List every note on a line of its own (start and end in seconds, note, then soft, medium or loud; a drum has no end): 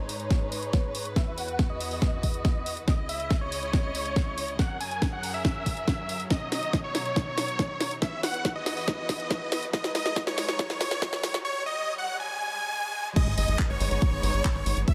0.00 1.15 G#2 medium
0.00 1.15 G#3 medium
0.00 1.15 D#4 medium
0.00 2.84 B4 medium
0.00 0.17 C#5 medium
0.00 riser medium
0.09 open hi-hat loud
0.20 1.08 C#5 medium
0.20 closed hi-hat medium
0.30 kick loud
0.30 snare soft
0.30 closed hi-hat medium
0.52 open hi-hat loud
0.63 closed hi-hat medium
0.73 kick loud
0.73 snare soft
0.73 closed hi-hat medium
0.95 open hi-hat loud
1.05 closed hi-hat medium
1.16 2.86 E2 medium
1.16 2.86 E3 medium
1.16 2.86 F#4 medium
1.16 1.34 E5 loud
1.16 kick loud
1.16 snare soft
1.16 closed hi-hat medium
1.38 1.65 F#5 medium
1.38 open hi-hat loud
1.48 closed hi-hat medium
1.59 kick loud
1.59 snare medium
1.59 closed hi-hat medium
1.70 1.88 D#5 medium
1.80 open hi-hat loud
1.91 2.79 D#5 loud
1.91 open hi-hat medium
2.02 kick loud
2.02 snare medium
2.02 closed hi-hat medium
2.23 kick medium
2.23 open hi-hat loud
2.34 closed hi-hat medium
2.45 kick loud
2.45 snare medium
2.45 closed hi-hat medium
2.66 open hi-hat loud
2.77 closed hi-hat medium
2.88 4.57 C#2 medium
2.88 4.57 C#3 medium
2.88 4.57 E4 medium
2.88 4.57 D#5 medium
2.88 3.06 D#5 medium
2.88 kick loud
2.88 snare medium
2.88 closed hi-hat medium
3.09 3.36 E5 medium
3.09 open hi-hat loud
3.20 closed hi-hat medium
3.31 kick loud
3.31 snare medium
3.31 closed hi-hat medium
3.41 3.59 C#5 medium
3.52 open hi-hat loud
3.63 4.50 C#5 loud
3.63 closed hi-hat medium
3.73 kick loud
3.73 snare medium
3.73 closed hi-hat medium
3.95 open hi-hat loud
4.06 closed hi-hat medium
4.16 kick loud
4.16 snare medium
4.16 closed hi-hat medium
4.38 open hi-hat loud
4.48 closed hi-hat medium
4.59 6.29 F#2 medium
4.59 7.98 F#3 medium
4.59 6.29 G#4 medium
4.59 6.29 A#4 medium
4.59 4.77 F#5 loud
4.59 kick loud
4.59 snare medium
4.59 closed hi-hat medium
4.80 5.08 G#5 loud
4.80 open hi-hat loud
4.91 closed hi-hat medium
5.02 kick loud
5.02 snare medium
5.02 closed hi-hat medium
5.13 5.31 F#5 medium
5.23 open hi-hat loud
5.34 6.22 E5 loud
5.34 open hi-hat medium
5.45 kick loud
5.45 snare medium
5.45 closed hi-hat medium
5.66 kick medium
5.66 open hi-hat loud
5.77 closed hi-hat medium
5.88 kick loud
5.88 snare medium
5.88 closed hi-hat medium
6.09 open hi-hat loud
6.20 closed hi-hat medium
6.30 8.00 B2 medium
6.30 8.00 D#4 medium
6.30 8.00 C#5 medium
6.30 6.49 D#5 loud
6.30 kick loud
6.30 snare medium
6.30 closed hi-hat medium
6.52 6.79 D#5 loud
6.52 snare medium
6.52 open hi-hat loud
6.63 closed hi-hat medium
6.73 kick loud
6.73 snare medium
6.73 closed hi-hat medium
6.84 7.02 C#5 medium
6.95 snare medium
6.95 open hi-hat loud
7.05 7.93 C#5 medium
7.05 closed hi-hat medium
7.16 kick loud
7.16 snare medium
7.16 closed hi-hat medium
7.38 snare medium
7.38 open hi-hat loud
7.48 closed hi-hat medium
7.59 kick loud
7.59 snare medium
7.59 closed hi-hat medium
7.80 snare medium
7.80 open hi-hat loud
7.91 closed hi-hat medium
8.02 9.72 E2 medium
8.02 9.72 E3 medium
8.02 9.72 F#4 medium
8.02 11.41 B4 medium
8.02 8.20 E5 loud
8.02 kick loud
8.02 snare medium
8.02 closed hi-hat medium
8.23 8.51 F#5 medium
8.23 snare medium
8.23 open hi-hat loud
8.34 closed hi-hat medium
8.45 kick loud
8.45 snare medium
8.45 closed hi-hat medium
8.55 8.74 D#5 medium
8.66 snare medium
8.66 open hi-hat loud
8.77 9.65 D#5 loud
8.77 open hi-hat medium
8.88 kick loud
8.88 snare medium
8.88 closed hi-hat medium
9.09 kick medium
9.09 snare medium
9.09 open hi-hat loud
9.20 closed hi-hat medium
9.31 kick loud
9.31 snare medium
9.31 closed hi-hat medium
9.52 snare medium
9.52 open hi-hat loud
9.63 closed hi-hat medium
9.73 11.43 G#2 medium
9.73 11.43 G#3 medium
9.73 11.43 D#4 medium
9.73 9.92 D#5 loud
9.73 kick loud
9.73 snare medium
9.73 closed hi-hat medium
9.84 snare medium
9.95 10.22 D#5 loud
9.95 snare medium
9.95 open hi-hat loud
10.06 snare medium
10.06 closed hi-hat medium
10.16 kick loud
10.16 snare medium
10.16 closed hi-hat medium
10.27 10.45 C#5 loud
10.27 snare medium
10.38 snare medium
10.38 open hi-hat loud
10.48 11.36 C#5 loud
10.48 snare medium
10.48 closed hi-hat medium
10.59 kick loud
10.59 snare medium
10.59 closed hi-hat medium
10.70 snare medium
10.81 snare loud
10.81 open hi-hat loud
10.91 snare medium
10.91 closed hi-hat medium
11.02 kick loud
11.02 snare loud
11.02 closed hi-hat medium
11.13 snare medium
11.23 snare loud
11.23 open hi-hat loud
11.34 snare medium
11.34 closed hi-hat medium
11.45 11.63 C#5 loud
11.66 11.94 D#5 loud
11.98 12.17 F#5 medium
12.20 13.08 G#5 loud
13.16 14.86 G#3 medium
13.16 14.86 B3 medium
13.16 14.86 D#4 medium
13.16 13.34 D#5 loud
13.16 kick loud
13.16 closed hi-hat medium
13.16 crash loud
13.16 sub drop medium
13.27 13.35 G#1 medium
13.38 13.46 G#1 loud
13.38 13.65 D#5 loud
13.38 open hi-hat loud
13.48 13.56 G#1 medium
13.48 closed hi-hat medium
13.59 kick loud
13.59 clap loud
13.59 closed hi-hat medium
13.70 13.78 G#1 medium
13.70 13.88 C#5 loud
13.80 13.89 G#1 loud
13.80 open hi-hat loud
13.91 13.99 G#1 medium
13.91 14.79 C#5 loud
13.91 closed hi-hat medium
14.02 kick loud
14.02 closed hi-hat medium
14.12 14.21 G#1 medium
14.23 14.31 G#1 loud
14.23 open hi-hat loud
14.34 14.42 G#1 medium
14.34 closed hi-hat medium
14.45 kick loud
14.45 clap loud
14.45 closed hi-hat medium
14.55 14.63 G#1 medium
14.66 14.74 G#1 loud
14.66 open hi-hat loud
14.77 14.85 G#1 medium
14.77 closed hi-hat medium
14.88 14.94 E3 medium
14.88 14.94 E4 medium
14.88 14.94 F#4 medium
14.88 14.94 B4 medium
14.88 14.94 E5 loud
14.88 kick loud
14.88 closed hi-hat medium